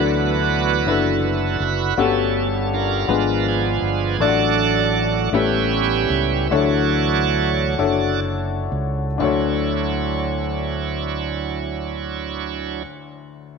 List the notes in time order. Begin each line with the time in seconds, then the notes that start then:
Already playing: D2 D3 E3 F#3 B3 D4 E4 F#4 A4 B4 D5
0.13 F#4 B4 D5
0.86 F#1 D4 E4 F#4 A4 B4
1.23 E3 F#3 B3
1.60 F#1 B4
1.97 G1 G2 G3 A3 B3 C#4 F#4 G4 A4
2.74 D4 F4 A#4
3.08 G#1 F3 G#3 B3 D4 F4 G#4 B4
3.40 A#4
3.48 B3 F4 G#4
3.82 G1
4.18 A1 A2 F#3 A3 D4 F4 A4 D5 F#5
4.27 F#4
5.32 A1 A2 G3 B3 C#4 E4 G4 A4 B4 C#5 E5
6.10 C#2
6.50 D2 D3 E3 F#3 D4 E4 F#4 A4 C#5 D5
7.79 F#1 D4 E4 F#4 A4 C#5
8.72 C#2
9.18 D2 F#3 D4 E4 F#4 A4 C#5
9.23 C#5